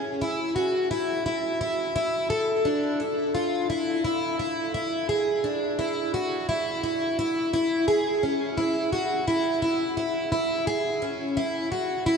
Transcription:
0.00 0.21 C#4 medium
0.22 0.55 E4 medium
0.56 0.90 F#4 medium
0.91 1.25 E4 medium
1.26 1.60 E4 medium
1.61 1.94 E4 medium
1.96 2.30 E4 medium
2.30 2.65 A4 medium
2.65 3.00 D4 medium
3.00 3.34 E4 medium
3.35 3.69 F4 medium
3.70 4.03 E4 medium
4.05 4.38 E4 medium
4.39 4.73 E4 medium
4.74 5.09 E4 medium
5.09 5.44 G#4 medium
5.44 5.79 D4 medium
5.79 6.14 E4 medium
6.14 6.48 F#4 medium
6.49 6.82 E4 medium
6.84 7.18 E4 medium
7.19 7.52 E4 medium
7.53 7.88 E4 medium
7.88 8.23 G#4 medium
8.23 8.58 C#4 medium
8.58 8.92 E4 medium
8.92 9.27 F#4 medium
9.28 9.61 E4 medium
9.62 9.96 E4 medium
9.97 10.31 E4 medium
10.32 10.67 E4 medium
10.67 11.02 G#4 medium
11.02 11.37 C#4 medium
11.37 11.71 E4 medium
11.72 12.06 F#4 medium
12.06 12.17 E4 medium

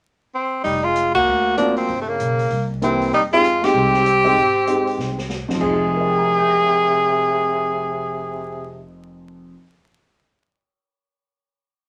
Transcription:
0.35 0.63 C4 medium
0.64 1.23 F1 medium
0.64 0.86 G3 medium
0.64 0.85 D#4 medium
0.64 kick soft
0.64 open hi-hat soft
0.84 1.14 G#3 medium
0.84 1.14 F4 medium
0.96 closed hi-hat soft
1.14 1.54 A#3 medium
1.14 1.54 F#4 medium
1.14 kick medium
1.14 ride medium
1.27 1.85 D2 medium
1.57 1.76 F3 medium
1.57 1.88 A#3 medium
1.57 1.89 C4 medium
1.57 1.76 D4 medium
1.57 1.89 F4 medium
1.57 1.89 F#4 medium
1.57 closed hi-hat soft
1.76 1.98 F3 medium
1.76 1.98 C4 medium
1.76 open hi-hat soft
1.88 2.17 G1 medium
1.88 kick soft
1.88 open hi-hat soft
1.99 2.11 C3 medium
1.99 2.10 A3 medium
2.08 2.51 C#3 medium
2.08 2.70 A#3 medium
2.19 2.48 B1 medium
2.19 closed hi-hat soft
2.39 open hi-hat soft
2.50 3.09 C2 medium
2.50 kick soft
2.50 open hi-hat soft
2.82 3.11 E3 medium
2.82 3.13 A#3 medium
2.82 3.13 C4 soft
2.82 3.11 C4 medium
2.82 3.13 E4 medium
2.82 3.14 G4 medium
2.82 closed hi-hat soft
3.02 open hi-hat soft
3.13 3.72 F2 medium
3.13 3.22 G3 medium
3.13 3.23 D#4 medium
3.13 kick soft
3.13 open hi-hat soft
3.31 3.64 G#3 medium
3.31 3.43 G#3 medium
3.31 3.43 C4 medium
3.31 3.43 D#4 medium
3.31 3.66 F4 loud
3.31 3.43 G4 medium
3.44 closed hi-hat soft
3.63 4.03 G#3 medium
3.63 5.29 C4 medium
3.63 4.03 C4 medium
3.63 4.04 D#4 medium
3.63 5.30 G4 loud
3.63 4.05 G4 medium
3.63 snare medium
3.63 ride medium
3.74 4.33 C2 medium
3.94 snare soft
4.06 closed hi-hat medium
4.24 4.35 G#3 medium
4.24 4.35 C4 medium
4.24 4.36 D#4 medium
4.24 4.36 G4 medium
4.24 open hi-hat soft
4.36 4.95 G#1 medium
4.36 kick soft
4.36 open hi-hat soft
4.67 5.14 G#3 medium
4.67 5.14 C4 soft
4.67 5.15 D#4 medium
4.67 5.15 G4 medium
4.67 closed hi-hat medium
4.87 open hi-hat soft
4.97 5.45 C2 medium
4.97 snare soft
5.18 snare medium
5.29 snare medium
5.48 9.50 F2 medium
5.48 muted upright bass stroke soft
5.48 snare medium
5.55 9.54 F3 medium
5.61 9.53 F1 medium
5.61 8.83 C3 medium
5.61 9.57 G#3 medium
5.61 8.83 G#4 loud
5.61 kick soft
5.61 crash medium
5.67 9.60 D#4 medium
5.73 9.63 G#4 medium
5.94 9.54 A#4 soft
6.00 9.57 D#5 soft
6.09 9.61 G5 soft
6.18 9.66 A#5 soft
6.28 9.71 D#6 soft
6.38 9.76 G6 soft
6.50 9.82 A#6 soft

